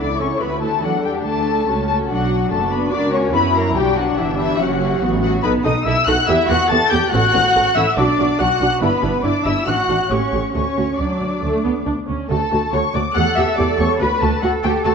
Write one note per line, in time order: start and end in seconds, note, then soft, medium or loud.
0.00 0.40 C#2 medium
0.00 0.81 E4 medium
0.00 0.39 A4 medium
0.00 0.20 D5 medium
0.00 0.20 D6 medium
0.20 0.28 C#4 medium
0.20 0.41 C#5 medium
0.20 0.41 C#6 medium
0.40 0.83 D2 medium
0.40 0.49 B3 medium
0.40 0.83 F#4 medium
0.40 0.62 B4 medium
0.40 0.62 B5 medium
0.62 0.83 A3 medium
0.62 0.83 A4 medium
0.62 0.83 A5 medium
0.83 1.25 E2 medium
0.83 0.91 F#3 medium
0.83 1.67 D4 medium
0.83 1.04 F#4 medium
0.83 1.25 A4 medium
0.83 1.04 F#5 medium
1.04 1.25 G3 medium
1.04 1.25 G4 medium
1.04 1.12 G5 medium
1.26 1.67 D2 medium
1.26 1.87 A3 medium
1.26 1.67 A4 medium
1.26 1.87 A4 medium
1.26 1.87 A5 loud
1.68 2.09 C#2 medium
1.68 2.09 C#4 medium
1.68 2.08 F#4 medium
1.88 1.97 A3 medium
1.88 2.09 A4 medium
1.88 1.96 A5 medium
2.09 2.50 B1 medium
2.09 2.50 F#3 medium
2.09 2.50 D4 medium
2.09 2.50 F#4 medium
2.09 2.51 F#4 medium
2.09 2.50 F#5 loud
2.50 2.92 F#1 medium
2.50 2.72 A3 medium
2.50 2.92 D4 medium
2.50 2.92 F#4 medium
2.50 2.71 A4 medium
2.50 2.72 A5 medium
2.71 2.92 B3 medium
2.71 2.92 B4 medium
2.71 2.93 B5 medium
2.92 3.34 C#2 medium
2.92 3.13 D4 loud
2.92 3.34 F#4 medium
2.92 3.34 A#4 medium
2.92 3.13 D5 loud
2.92 3.00 D6 medium
3.13 3.34 C#4 medium
3.13 3.34 C#5 medium
3.13 3.22 C#6 medium
3.34 3.76 F#2 medium
3.34 3.55 B3 medium
3.34 3.75 E4 medium
3.34 3.75 F#4 medium
3.34 3.55 B4 medium
3.34 3.55 B5 loud
3.55 3.76 A#3 medium
3.55 3.76 A#4 medium
3.55 3.76 A#5 medium
3.75 4.18 B1 medium
3.75 3.96 G3 medium
3.75 4.60 D4 medium
3.75 4.17 F#4 medium
3.75 3.96 G4 loud
3.75 3.97 G5 loud
3.97 4.18 F#3 medium
3.97 4.18 F#4 medium
3.97 4.18 F#5 medium
4.18 4.59 G1 medium
4.18 4.37 E3 medium
4.18 4.26 E4 medium
4.18 5.02 G4 medium
4.18 4.37 E5 medium
4.39 4.59 E3 medium
4.39 4.59 E4 medium
4.39 4.59 E5 loud
4.59 5.01 F#1 medium
4.59 5.21 F#3 medium
4.59 5.02 C#4 medium
4.59 5.21 F#4 medium
4.59 5.21 F#5 medium
5.01 5.43 A1 loud
5.01 5.44 B3 medium
5.01 5.44 F#4 medium
5.22 5.43 F#3 medium
5.22 5.43 F#4 medium
5.22 5.30 F#5 medium
5.43 5.52 B1 medium
5.43 5.65 B3 medium
5.43 5.52 D#4 medium
5.43 5.52 A4 medium
5.43 5.51 B4 loud
5.43 5.51 B5 loud
5.65 5.73 B1 medium
5.65 5.73 D#4 medium
5.65 5.86 D#4 medium
5.65 5.73 A4 medium
5.65 5.73 D#5 medium
5.65 5.85 D#6 loud
5.85 5.95 B1 medium
5.85 5.94 D#4 medium
5.85 5.94 E4 loud
5.85 5.95 A4 medium
5.85 6.06 E5 medium
5.85 6.07 E6 loud
6.07 6.15 B1 medium
6.07 6.15 D#4 medium
6.07 6.15 F#4 medium
6.07 6.15 A4 medium
6.07 6.28 F#5 loud
6.07 6.28 F#6 loud
6.27 6.36 E2 medium
6.27 6.36 B3 medium
6.27 6.49 E4 loud
6.27 6.36 G4 medium
6.27 6.49 E5 loud
6.27 6.36 E6 loud
6.48 6.57 E2 medium
6.48 6.58 B3 medium
6.48 6.71 F#4 loud
6.48 6.58 G4 medium
6.48 6.70 F#5 loud
6.48 6.70 F#6 loud
6.69 6.79 E2 medium
6.69 6.78 B3 medium
6.69 6.79 G4 medium
6.69 6.92 A4 loud
6.69 6.91 A5 loud
6.69 6.91 A6 loud
6.91 7.00 E2 medium
6.91 6.99 B3 medium
6.91 7.00 G4 medium
6.91 7.13 G4 medium
6.91 7.12 G5 loud
6.91 7.13 G6 loud
7.12 7.22 A1 loud
7.12 7.21 C#4 medium
7.12 7.75 F#4 loud
7.12 7.21 A4 medium
7.12 7.75 F#5 loud
7.12 7.75 F#6 loud
7.34 7.43 A1 medium
7.34 7.42 C#4 medium
7.34 7.42 A4 medium
7.55 7.64 A1 medium
7.55 7.63 C#4 medium
7.55 7.63 A4 medium
7.76 7.85 A1 medium
7.76 7.84 C#4 medium
7.76 7.85 E4 medium
7.76 7.84 A4 medium
7.76 7.98 E5 loud
7.76 7.97 E6 loud
7.97 8.06 B1 medium
7.97 8.05 D4 medium
7.97 8.40 D4 loud
7.97 8.05 F#4 medium
7.97 8.40 D5 loud
7.97 8.39 D6 loud
8.19 8.27 B1 medium
8.19 8.27 D4 medium
8.19 8.27 F#4 medium
8.40 8.48 B1 medium
8.40 8.48 D4 medium
8.40 8.48 F#4 medium
8.40 8.82 F#4 medium
8.40 8.82 F#5 loud
8.40 8.82 F#6 loud
8.61 8.69 B1 medium
8.61 8.69 D4 medium
8.61 8.69 F#4 medium
8.82 8.90 G1 medium
8.82 9.24 B3 medium
8.82 8.90 D4 medium
8.82 8.90 E4 medium
8.82 9.24 B4 medium
8.82 9.24 B5 loud
9.02 9.12 G1 medium
9.02 9.10 D4 medium
9.02 9.10 E4 medium
9.24 9.33 G1 medium
9.24 9.32 D4 medium
9.24 9.46 D4 medium
9.24 9.32 E4 medium
9.24 9.46 D5 medium
9.24 9.45 D6 loud
9.45 9.54 G1 medium
9.45 9.53 D4 medium
9.45 9.53 E4 medium
9.45 9.67 E4 medium
9.45 9.67 E5 medium
9.45 9.68 E6 loud
9.67 9.76 A1 medium
9.67 9.75 D4 medium
9.67 10.10 F#4 medium
9.67 9.75 F#4 medium
9.67 10.10 F#5 medium
9.67 10.11 F#6 loud
9.89 9.97 A1 medium
9.89 9.97 D4 medium
9.89 9.97 F#4 medium
10.11 10.19 A1 medium
10.11 10.19 A3 medium
10.11 10.53 C#4 medium
10.11 10.19 G4 medium
10.11 10.53 C#5 medium
10.11 10.54 C#6 medium
10.32 10.41 A1 medium
10.32 10.40 A3 medium
10.32 10.40 G4 medium
10.54 10.63 D2 medium
10.54 10.63 A3 medium
10.54 10.98 C#4 medium
10.54 10.63 F#4 medium
10.54 10.98 C#5 medium
10.54 10.98 C#6 medium
10.77 10.85 D2 medium
10.77 10.85 A3 medium
10.77 10.85 F#4 medium
10.98 11.07 D2 medium
10.98 11.39 F#3 medium
10.98 11.86 D4 medium
10.98 11.86 D5 medium
10.98 11.86 D6 medium
11.21 11.29 D2 medium
11.42 11.51 D2 medium
11.42 11.64 A3 medium
11.64 11.73 D2 medium
11.64 11.72 B3 medium
11.86 11.94 D2 medium
11.86 11.94 D4 medium
12.07 12.16 D2 medium
12.07 12.29 C#4 medium
12.29 12.38 D2 medium
12.29 12.38 A3 medium
12.29 12.37 F#4 medium
12.29 12.70 A4 medium
12.29 12.70 A5 loud
12.51 12.60 D2 medium
12.51 12.59 A3 medium
12.51 12.59 F#4 medium
12.72 12.81 D2 medium
12.72 12.81 A3 medium
12.72 12.80 F#4 medium
12.72 12.80 C#5 loud
12.72 12.94 C#6 loud
12.94 13.02 D2 medium
12.94 13.02 A3 medium
12.94 13.02 F#4 medium
12.94 13.02 D5 medium
12.94 13.15 D6 medium
13.15 13.24 E2 medium
13.15 13.23 A3 medium
13.15 13.24 G4 medium
13.15 13.96 A4 loud
13.15 13.36 F#5 loud
13.15 13.36 F#6 loud
13.36 13.45 E2 medium
13.36 13.45 A3 medium
13.36 13.45 G4 medium
13.36 13.58 E5 medium
13.36 13.57 E6 medium
13.57 13.66 E2 medium
13.57 13.65 A3 medium
13.57 13.65 G4 medium
13.57 13.79 D5 medium
13.57 13.65 D6 loud
13.78 13.87 E2 medium
13.78 13.87 A3 medium
13.78 13.87 G4 medium
13.78 14.00 C#5 medium
13.78 13.99 C#6 loud
14.00 14.08 D2 medium
14.00 14.08 A3 medium
14.00 14.08 F#4 medium
14.00 14.42 B4 medium
14.00 14.08 B4 loud
14.00 14.21 B5 loud
14.22 14.30 D2 medium
14.22 14.30 A3 medium
14.22 14.30 F#4 medium
14.22 14.30 A4 medium
14.22 14.43 A5 loud
14.43 14.51 D2 medium
14.43 14.51 A3 medium
14.43 14.51 F#4 medium
14.43 14.95 A4 loud
14.43 14.51 F#5 loud
14.63 14.72 D2 medium
14.63 14.72 A3 medium
14.63 14.72 F#4 medium
14.63 14.85 G4 medium
14.63 14.71 G5 loud
14.85 14.94 D2 medium
14.85 14.93 A3 medium
14.85 14.93 F#4 medium
14.85 14.95 A4 loud
14.85 14.93 A5 loud